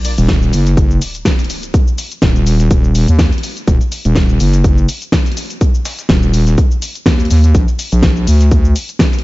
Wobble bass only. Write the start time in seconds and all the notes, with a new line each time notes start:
0.18 D#1
0.53 F#1
2.22 D#1
2.71 D#1
3.08 D#2
3.68 D#1
4.05 D#1
4.40 F#1
6.10 D#1
7.06 D#2
7.31 D#2
7.55 A#1
7.92 A#1
8.27 D2